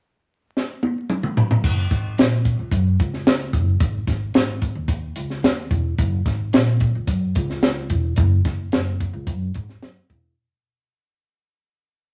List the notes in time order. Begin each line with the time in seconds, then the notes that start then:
0.57 snare
0.83 high tom
1.10 mid tom
1.23 mid tom
1.37 floor tom
1.51 floor tom
1.64 F#1, kick, crash
1.91 G#1, kick, closed hi-hat
2.18 A#1, snare, closed hi-hat
2.45 kick, closed hi-hat
2.59 C#2
2.71 F#2, kick, closed hi-hat
3.00 C#2, kick, closed hi-hat
3.14 snare
3.27 snare, closed hi-hat
3.53 F#1, kick, closed hi-hat
3.80 G#1, kick, closed hi-hat
4.07 G#1, kick, snare, closed hi-hat
4.34 G#1, snare, closed hi-hat
4.62 kick, closed hi-hat
4.75 D#2
4.88 kick, closed hi-hat
5.16 C#2, closed hi-hat
5.30 snare
5.43 D#2, snare, closed hi-hat
5.71 E1, kick, closed hi-hat
5.98 F#1, kick, closed hi-hat
6.26 G#1, kick, snare, closed hi-hat
6.53 A#1, snare, closed hi-hat
6.80 kick, closed hi-hat
6.95 C#2
7.07 F#2, kick, closed hi-hat
7.35 C#2, kick, closed hi-hat
7.50 snare
7.63 snare, closed hi-hat
7.90 E1, kick, closed hi-hat
8.16 F#1, kick, closed hi-hat
8.45 F#1, kick, snare, closed hi-hat
8.72 F#1, snare, closed hi-hat
9.00 kick, closed hi-hat
9.13 C#2
9.27 F#2, kick, closed hi-hat
9.54 G#2, kick, closed hi-hat
9.69 snare
9.82 F#2, snare, closed hi-hat
10.10 E1, kick, closed hi-hat